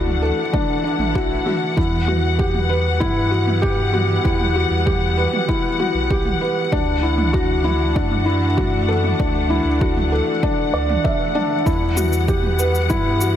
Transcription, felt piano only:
Already playing: D4 E4 F#4 A4
0.22 A4
0.53 D4
0.84 D4
1.15 F#4
1.46 F#4
1.77 E4
2.08 F#4
2.39 G4
2.69 B4
3.00 E4
3.31 F#4
3.62 G4
3.93 F#4
4.24 E4
4.56 F#4
4.86 G4
5.18 B4
5.49 E4
5.80 F#4
6.11 G4
6.41 B4
6.72 D4
7.03 E4
7.33 F#4
7.64 E4
7.95 D4
8.26 E4
8.57 F#4
8.89 A4
9.19 D4
9.50 E4
9.81 F#4
10.12 A4
10.43 D4
10.74 D5
11.04 E5
11.35 D4
11.66 E4
11.97 F#4
12.28 G4
12.59 B4
12.90 E4
13.21 F#4

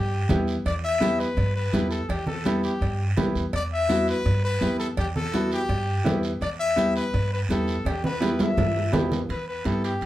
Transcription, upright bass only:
Already playing: G2
0.30 E2
0.66 E2
1.37 G2
1.73 E2
2.09 E2
2.81 G2
3.18 D2
3.35 E2
3.53 E2
4.25 G2
4.61 E2
4.97 E2
5.69 G2
6.05 E2
6.41 E2
7.14 G2
7.49 E2
7.85 E2
8.57 G2
8.93 E2
9.29 E2
9.66 G2
10.02 E2

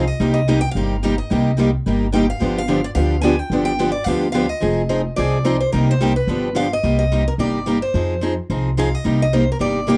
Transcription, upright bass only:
0.20 C2
0.75 G1
1.31 C2
1.86 G1
2.41 G1
2.95 D2
3.50 G1
4.06 D2
4.62 F1
5.18 C2
5.74 C2
6.27 G1
6.83 C2
7.38 G1
7.94 F2
8.50 C2
9.05 C2
9.60 G1

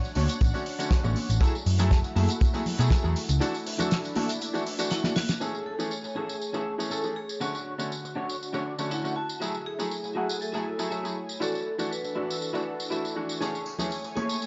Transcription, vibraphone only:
4.91 E4
5.16 F#4
5.41 G#4
5.66 A4
5.91 C#5
6.16 G#4
6.91 A4
7.16 G#4
7.41 F#4
8.91 E4
9.16 F#4
9.66 G#4
10.41 A4
10.91 C#5
11.41 A4
11.91 B4

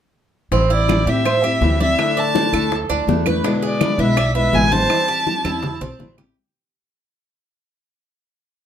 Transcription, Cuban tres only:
0.52 C4
0.70 E4
1.07 G4
1.25 C5
1.44 G4
1.80 D5
2.17 D5
2.53 A4
2.90 D4
3.26 B4
3.44 D4
3.63 G#4
3.99 B4
4.17 D5
4.35 B4
4.72 C5
5.08 G4
5.45 E4
5.81 C4
6.18 G4

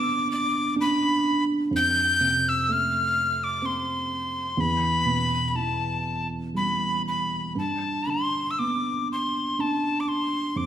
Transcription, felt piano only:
Already playing: G2 D3 B3
0.76 D4
1.71 F2
2.21 C3
2.68 A3
3.62 C4
4.57 E2
5.05 B2
5.55 E3
6.54 G3
7.55 G2
8.07 D3
8.59 B3
9.59 D4
10.56 F2

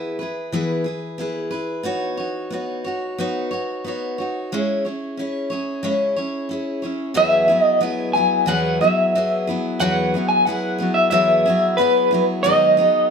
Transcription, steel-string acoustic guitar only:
Already playing: B3 E4 G#4 B4
0.19 E4 G#4 B4
0.52 E3 B3 E4 G#4 B4
0.84 E4 G#4 B4
1.18 B3 E4 G#4 B4
1.51 E4 G#4 B4
1.83 B3 D#4 F#4 C#5
2.17 D#4 F#4 C#5
2.50 B3 D#4 F#4 C#5
2.84 D#4 F#4 C#5
3.18 B3 D#4 F#4 C#5
3.51 D#4 F#4 C#5
3.84 B3 D#4 F#4 C#5
4.18 D#4 F#4 C#5
4.52 C#3 G#3 C#4 E4 G#4 C#5
4.85 C#4 E4 G#4 C#5
5.17 C#4 E4 G#4 C#5
5.50 C#4 E4 G#4 C#5
5.83 C#3 G#3 C#4 E4 G#4 C#5
6.16 C#4 E4 G#4 C#5
6.49 C#4 E4 G#4 C#5
6.82 C#4 E4 G#4 C#5
7.14 E2 E3 F#3 B3 E4 G#4
7.48 F#3 B3 E4 G#4
7.81 F#3 B3 E4 G#4
8.15 F#3 B3 E4 G#4
8.46 E2 E3 F#3 B3 E4 G#4
8.81 F#3 B3 E4 G#4
9.15 F#3 B3 E4 G#4
9.47 F#3 B3 E4 G#4
9.80 E2 E3 F#3 B3 E4 G#4
10.14 F#3 B3 E4 G#4
10.46 F#3 B3 E4 G#4
10.78 F#3 B3 E4 G#4
11.11 E2 E3 F#3 B3 E4 G#4
11.46 F#3 B3 E4 G#4
11.78 F#3 B3 E4 G#4
12.11 F#3 B3 E4 G#4
12.44 G#2 D#3 F#3 B3 D#4 G#4
12.77 F#3 B3 D#4 G#4

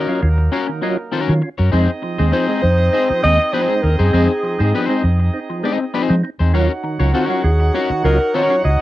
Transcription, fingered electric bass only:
0.23 D#2
1.29 D#3
1.59 F#2
1.73 F2
2.20 D#2
2.64 F2
3.10 muted fingered electric bass stroke
3.24 D#2
3.84 D#2
4.00 F#2
4.14 F2
4.60 G#2
5.04 F2
6.10 F3
6.40 E2
6.54 D#2
7.00 C#2
7.44 D#2
7.90 muted fingered electric bass stroke
8.04 C#2
8.65 C#2

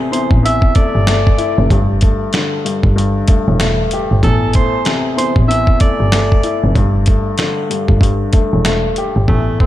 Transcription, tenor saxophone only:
0.12 C5
0.45 E5
0.76 D5
4.24 A4
4.56 C5
5.18 C5
5.48 E5
5.81 D5
9.28 A3
9.60 C4

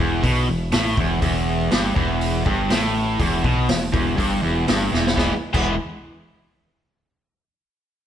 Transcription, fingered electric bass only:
0.00 E1
0.24 B1
0.49 E1
0.73 A1
0.97 E1
1.22 E1
1.72 G1
1.96 E1
2.46 G1
2.70 A1
3.19 E1
3.44 B1
3.69 E1
3.94 E1
4.19 G1
4.44 E1
4.69 G1
4.93 E1
5.17 E1
5.54 E1

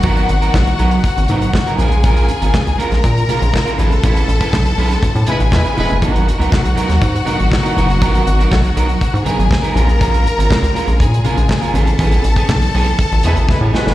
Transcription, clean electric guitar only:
0.04 F#3 B3 D#4 A#4
0.28 muted clean electric guitar stroke
0.42 F#3 B3 D#4 A#4
0.53 muted clean electric guitar stroke
0.66 muted clean electric guitar stroke
0.79 F#3 B3 D#4 A#4
0.92 muted clean electric guitar stroke
1.05 muted clean electric guitar stroke
1.17 muted clean electric guitar stroke
1.30 F#3 B3 D#4 A#4
1.42 muted clean electric guitar stroke
1.55 muted clean electric guitar stroke
1.67 F#3 B3 D#4 A#4
1.81 G#3 C#4 F4 A#4
1.92 muted clean electric guitar stroke
2.04 G#3 C#4 F4 A#4
2.30 muted clean electric guitar stroke
2.42 G#3 C#4 F4 A#4
2.54 muted clean electric guitar stroke
2.67 muted clean electric guitar stroke
2.78 G#3 C#4 F4 A#4
2.91 muted clean electric guitar stroke
3.04 muted clean electric guitar stroke
3.16 muted clean electric guitar stroke
3.29 G#3 C#4 F4 A#4
3.41 muted clean electric guitar stroke
3.54 muted clean electric guitar stroke
3.65 G#3 C#4 F4 A#4
3.77 G#3 C#4 E4 B4
3.91 muted clean electric guitar stroke
4.04 G#3 C#4 E4 B4
4.28 muted clean electric guitar stroke
4.41 G#3 C#4 E4 B4
4.53 muted clean electric guitar stroke
4.66 muted clean electric guitar stroke
4.78 G#3 C#4 E4 B4
4.91 muted clean electric guitar stroke
5.03 muted clean electric guitar stroke
5.16 muted clean electric guitar stroke
5.27 G#3 C#4 E4 B4
5.41 muted clean electric guitar stroke
5.53 muted clean electric guitar stroke
5.64 G#3 C#4 E4 B4
5.77 G#3 C#4 E4 B4
5.89 muted clean electric guitar stroke
6.01 F#3 B3 D#4 A#4
6.27 muted clean electric guitar stroke
6.38 F#3 B3 D#4 A#4
6.50 muted clean electric guitar stroke
6.63 muted clean electric guitar stroke
6.76 F#3 B3 D#4 A#4
6.89 muted clean electric guitar stroke
7.00 muted clean electric guitar stroke
7.13 muted clean electric guitar stroke
7.25 F#3 B3 D#4 A#4
7.38 muted clean electric guitar stroke
7.51 muted clean electric guitar stroke
7.63 F#3 B3 D#4 A#4
7.76 F#3 B3 D#4 A#4
7.89 muted clean electric guitar stroke
8.00 F#3 B3 D#4 A#4
8.27 muted clean electric guitar stroke
8.39 F#3 B3 D#4 A#4
8.51 muted clean electric guitar stroke
8.64 muted clean electric guitar stroke
8.76 F#3 B3 D#4 A#4
8.88 muted clean electric guitar stroke
9.00 muted clean electric guitar stroke
9.13 muted clean electric guitar stroke
9.25 F#3 B3 D#4 A#4
9.38 muted clean electric guitar stroke
9.50 muted clean electric guitar stroke
9.62 F#3 B3 D#4 A#4
9.75 G#3 C#4 F4 A#4
9.88 muted clean electric guitar stroke
9.99 G#3 C#4 F4 A#4
10.24 muted clean electric guitar stroke
10.37 G#3 C#4 F4 A#4
10.49 muted clean electric guitar stroke
10.61 muted clean electric guitar stroke
10.74 G#3 C#4 F4 A#4
10.86 muted clean electric guitar stroke
11.00 muted clean electric guitar stroke
11.12 muted clean electric guitar stroke
11.24 G#3 C#4 F4 A#4
11.37 muted clean electric guitar stroke
11.50 muted clean electric guitar stroke
11.61 G#3 C#4 F4 A#4
11.74 E3 B3 C#4 G#4
11.88 muted clean electric guitar stroke
11.99 E3 B3 C#4 G#4
12.24 muted clean electric guitar stroke
12.37 E3 B3 C#4 G#4
12.50 muted clean electric guitar stroke
12.63 muted clean electric guitar stroke
12.75 E3 B3 C#4 G#4
12.87 muted clean electric guitar stroke
13.01 muted clean electric guitar stroke
13.13 muted clean electric guitar stroke
13.25 E3 B3 C#4 G#4
13.37 muted clean electric guitar stroke
13.49 muted clean electric guitar stroke
13.62 E3 B3 C#4 G#4
13.73 E3 B3 C#4 G#4
13.87 muted clean electric guitar stroke

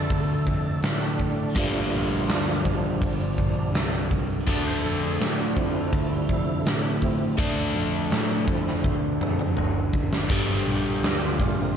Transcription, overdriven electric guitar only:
Already playing: D3 A3 D4
1.55 G2 D3 G3
4.47 D3 A3 D4
7.38 D3 A3 D4
10.29 G2 D3 G3

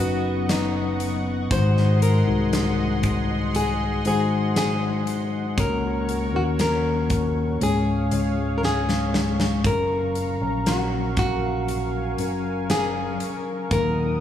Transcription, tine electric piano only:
Already playing: F#3 B3
0.00 C#4 D#4 B4
1.51 G#2 D#3 G#3 D#4 F#4 C5
2.27 G#3 D#4 F#4 G#4
4.05 G#3 D#4 F#4 C5
5.58 C#3 A#3 C#4 F#4 C#5
6.33 A#3 C#4 F#4 A#4
7.61 G#2 G#3 C#4 F4 C#5
8.11 G#3 C#4 F4 C#5
9.64 C#3 F#3 C#4 F4 A#4
10.41 F#3 C#4 A#4 F5
12.19 F#3 C#4 A#4 F5
13.71 A#2 F#3 A#3 D#4 A#4

